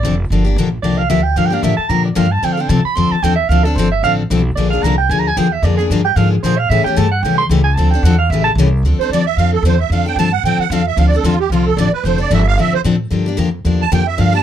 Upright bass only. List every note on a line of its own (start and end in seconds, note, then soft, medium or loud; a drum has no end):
0.03 0.29 F1 medium
0.30 0.56 G1 medium
0.56 0.82 A#1 medium
0.83 1.09 C2 medium
1.10 1.35 D2 medium
1.36 1.62 G2 medium
1.63 1.77 A2 medium
1.78 muted upright bass stroke soft
1.89 2.15 A#2 medium
2.16 2.42 G2 loud
2.42 2.68 D3 medium
2.69 2.83 C3 medium
2.85 muted upright bass stroke soft
2.97 3.10 F2 medium
3.11 muted upright bass stroke soft
3.23 3.48 E2 medium
3.49 3.75 D2 medium
3.76 4.02 G1 medium
4.03 4.29 A1 medium
4.30 4.55 B1 loud
4.56 4.82 A#1 medium
4.83 5.09 C2 medium
5.09 5.35 D2 medium
5.37 5.62 E2 medium
5.62 5.88 F2 medium
5.90 6.15 G2 medium
6.16 6.42 G#2 medium
6.43 6.69 A#2 medium
6.70 6.83 A2 medium
6.85 muted upright bass stroke soft
6.97 7.22 G2 medium
7.23 7.49 C2 medium
7.49 7.75 C#2 medium
7.77 8.02 D2 medium
8.03 8.29 E2 medium
8.30 8.55 A1 medium
8.55 8.82 C2 loud
8.83 8.97 D2 medium
9.09 9.35 E2 medium
9.37 9.62 F2 medium
9.62 9.89 E2 medium
9.90 10.15 F2 medium
10.16 10.42 G2 medium
10.43 10.57 A2 medium
10.58 muted upright bass stroke soft
10.70 10.96 F2 medium
10.97 11.23 D2 medium
11.23 11.49 E2 medium
11.50 11.76 C2 medium
11.77 11.91 A1 medium
11.92 muted upright bass stroke soft
12.04 12.30 F1 medium
12.30 12.57 G1 medium
12.58 12.71 A1 medium
12.72 muted upright bass stroke soft
12.84 13.10 A2 medium
13.11 13.37 G2 medium
13.38 13.64 F2 medium
13.65 13.91 E2 medium
13.92 14.18 F2 medium
14.18 14.43 G2 medium